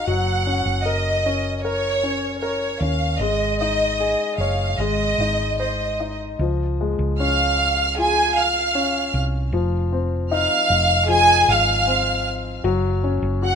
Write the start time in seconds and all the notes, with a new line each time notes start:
0.05 F#1 F#3 F#5
0.46 C#4
0.66 F#1
0.84 A#4 D#5
1.26 C#4
1.57 D#5
1.61 A#4 C#5
2.03 C#4
2.41 A#4 C#5
2.81 D#2 C#4 F5
3.19 G#1 G#3 D#5
3.59 D#4 D#5
4.00 G#4
4.38 F#1 C#5 F5
4.78 G#1 G#3 D#5
5.18 G#1 D#4
5.60 C5 D#5
6.00 D#4
6.39 C#2 F3
6.81 G#3
6.99 C#2
7.19 C#4 F5 F6
7.98 F4 G#4 G#5
8.39 F5 F6
8.75 C#4
9.14 C2
9.52 F1 F3
9.92 C4
10.31 D#4 F5 F6
10.70 F1
11.08 F3 G#4 G#5
11.48 G#1 F5 F6
11.87 C4
12.64 F#1 F#3
13.04 C#4
13.22 F#1
13.42 F#4 F#5 F#6